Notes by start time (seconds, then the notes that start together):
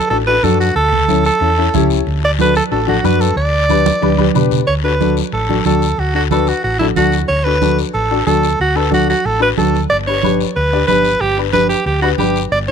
0.10 A1 D4 F#4 A4, long guiro
0.27 D4 F#4 A4 B4
0.43 F#2 D4 F#4 A4, high conga, short guiro
0.60 F#4, short guiro
0.75 D2 A4, long guiro
0.93 low conga
1.09 C#4 E4 A4, high conga, short guiro
1.25 A4, short guiro
1.40 E2 C#4 E4 A4, long guiro
1.58 C#4 E4 A4
1.74 C#2 C#4 E4 G4 C#5, high conga, low conga, short guiro
1.90 short guiro
2.07 D2, long guiro
2.25 D5
2.39 D4 F#4 A4 B4, high conga, short guiro
2.55 A4, short guiro
2.71 A1 D4 F#4 A4, long guiro
2.87 D4 F#4 A4, high conga
3.04 F#2 D4 F#4 B4, high conga, short guiro
3.21 A4, short guiro
3.36 D2 D5, long guiro
3.69 D4 G4 B4, high conga, short guiro
3.86 high conga, short guiro
4.02 D2 D4 G4 B4, high conga, long guiro
4.17 D4 G4 B4, high conga
4.34 B2 D4 G4 B4, low conga, short guiro
4.51 low conga, short guiro
4.67 D2 C#5, long guiro
4.84 D4 F#4 A4 B4
5.00 D4 F#4 A4, high conga, short guiro
5.17 short guiro
5.32 A1 A4, long guiro
5.49 D4 F#4 A4, high conga
5.65 D2 D4 F#4 A4, high conga, short guiro
5.82 short guiro
5.98 D2 F#4, long guiro
6.14 D4 F#4 A4
6.31 D4 F#4 A4 B4, high conga, short guiro
6.47 F#4, short guiro
6.63 A1 F#4, long guiro
6.79 D4 E4 F#4 A4, high conga
6.96 D2 D4 F#4 A4, high conga, short guiro
7.12 short guiro
7.28 D2 C#5, long guiro
7.44 D4 F#4 A4 B4
7.61 D4 F#4 A4, high conga, short guiro
7.79 short guiro
7.94 A1 A4, long guiro
8.11 D4 F#4 A4
8.27 D2 D4 F#4 A4, high conga, short guiro
8.43 short guiro
8.60 D2 F#4, long guiro
8.75 D4 F#4 A4 B4
8.90 D4 F#4 A4, high conga, short guiro
9.10 F#4, short guiro
9.25 A1 A4, long guiro
9.40 D4 F#4 B4
9.57 D2 D4 F#4 A4, high conga, short guiro
9.75 short guiro
9.90 G1 D5, long guiro
10.07 D4 G4 B4 C#5
10.23 D4 G4 B4, high conga, short guiro
10.40 short guiro
10.56 D2 B4, long guiro
10.73 D4 G4 D5
10.87 G1 D4 G4 B4, high conga, short guiro
11.05 short guiro
11.21 G1 G4, long guiro
11.37 D4 G4 B4
11.53 D4 G4 B4, high conga, short guiro
11.69 G4, short guiro
11.86 D2 G4, long guiro
12.02 D4 F#4 G4 B4
12.18 G1 D4 G4 B4, high conga, short guiro
12.36 short guiro
12.51 G1 D5, long guiro
12.68 D4 G4 C#5